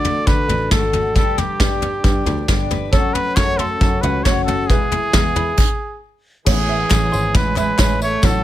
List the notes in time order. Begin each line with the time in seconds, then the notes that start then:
Already playing: D3 A3 D4 F#4 D5
0.05 A3 D4 F#4 A4, floor tom
0.27 D3 A3 D4 F#4 B4, kick, floor tom
0.48 A1 A3 D4 F#4, floor tom
0.71 G#1 D3 A3 D4 F#4 A4, kick, snare, floor tom
0.93 A3 D4 F#4, floor tom
1.15 G1 G2 D3 G3 B3 D4 G4 A4, kick, floor tom
1.38 B3 D4 G4, floor tom
1.59 G2 D3 G3 B3 D4 G4, kick, snare, floor tom
1.81 G3 B3 D4 G4, floor tom
2.04 G2 D3 G3 B3 D4 G4, kick, floor tom
2.26 D2 G3 B3 D4 G4, floor tom
2.48 G1 G2 D3 G3 B3 D4 G4, kick, snare, floor tom
2.70 G3 B3 D4 G4 B4, floor tom
2.92 F#1 F#2 C#3 F#3 A3 C#4 F#4 A4 C#5, kick, floor tom
3.14 F#3 A3 C#4 F#4 B4, floor tom
3.36 F#2 C#3 F#3 A3 C#4 F#4 C#5 A5, kick, snare, clap, floor tom
3.58 F#3 A3 C#4 F#4 A4 C6, floor tom
3.80 F#2 C#3 F#3 A3 C#4 F#4 A5, kick, floor tom
4.01 C#2 F#3 A3 C#4 F#4 B4 F#5, floor tom
4.24 F#1 F#2 C#3 F#3 A3 C#4 F#4 C#5, kick, snare, clap, floor tom
4.44 C#4 F#4 A4 F#5, floor tom
4.48 F#3 A3
4.67 E1 E2 B2 E3 G#3 B3 G#4 B4, kick, floor tom
4.71 E4
4.91 E3 G#3 B3 G#4, floor tom
5.13 E2 B2 E3 G#3 B3 G#4 G#5, kick, snare, clap, floor tom
5.35 E3 G#3 B3 E4 G#4 B5, floor tom
5.57 kick, crash
6.45 A1 A2 E3 G#3 B3 C#4 E4 G#4 C#5, kick, floor tom, crash, tambourine
6.69 B3 C#4 G#4 E5
6.90 A1 A2 E3 B3 C#4 G#4 B5, kick, snare, clap, tambourine
7.11 G#1 B3 C#4 G#4 C6, tambourine
7.34 A1 E3 G#3 B3 C#4 G#4 B4 B5, kick, floor tom
7.56 G#3 B3 C#4 G#4 B4 E5, clap, floor tom, tambourine
7.78 A1 A2 E3 G#3 B3 C#4 G#4 B4 C#5, kick, snare, clap, tambourine
8.00 A3 B3 C#4 G#4 C#5 E5, tambourine
8.22 A1 A2 F#3 A3 C#4 F#4 A4 C#5, kick, floor tom, tambourine